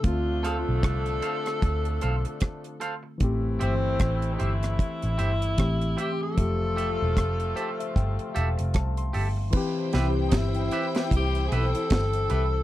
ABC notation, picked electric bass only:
X:1
M:4/4
L:1/16
Q:"Swing 16ths" 1/4=76
K:C
V:1 name="Picked electric bass" clef=bass
D,,3 B,,, C,,2 z2 D,,2 B,,, z4 z | A,,,2 G,,,2 A,,,2 G,,,2 z A,,, G,,,2 A,,,2 z2 | F,,,3 E,,, F,,,2 z2 G,,, z E,,, F,,, C,,2 G,,,2 | z2 C,,2 G,,,2 z2 C,,2 B,,, z G,,,2 C,,2 |]